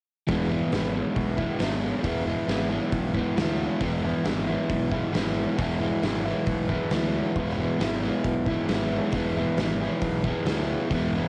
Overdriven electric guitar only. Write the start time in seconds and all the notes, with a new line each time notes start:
0.27 E3 G#3 B3
0.31 E4
0.49 B3 E4
0.53 G#3
0.73 E3 G#3 B3 E4
0.93 B3 E4
0.98 G#3
1.37 G#3 B3 E4
1.59 E3 G#3 B3
1.63 E4
2.03 E3 G#3 B3
2.08 E4
2.26 G#3 B3 E4
2.48 E3 G#3 B3 E4
2.70 B3 E4
2.74 G#3
3.14 B3 E4
3.19 G#3
3.36 E3 G#3 B3
3.40 E4
3.81 E3 G#3 B3 E4
4.04 B3 E4
4.08 G#3
4.25 E3 G#3 B3
4.29 E4
4.47 B3 E4
4.51 G#3
4.91 B3 E4
4.95 G#3
5.12 E3 G#3 B3
5.17 E4
5.58 E3 G#3 B3 E4
5.80 B3 E4
5.84 G#3
6.03 E3 G#3 B3 E4
6.25 B3 E4
6.30 G#3
6.70 B3 E4
6.74 G#3
6.92 E3 G#3 B3 E4
7.35 E3 G#3 B3
7.39 E4
7.57 G#3 B3 E4
7.79 E3 G#3 B3
7.83 E4
8.03 G#3 B3 E4
8.47 G#3 B3 E4
8.69 E3 G#3 B3
8.73 E4
9.13 E3 G#3 B3
9.18 E4
9.36 B3 E4
9.41 G#3
9.58 E3 G#3 B3 E4
9.80 B3 E4
9.84 G#3
10.24 B3 E4
10.28 G#3
10.46 E3 G#3 B3
10.50 E4
10.91 E3 G#3 B3
10.96 E4
11.15 B3 E4
11.20 G#3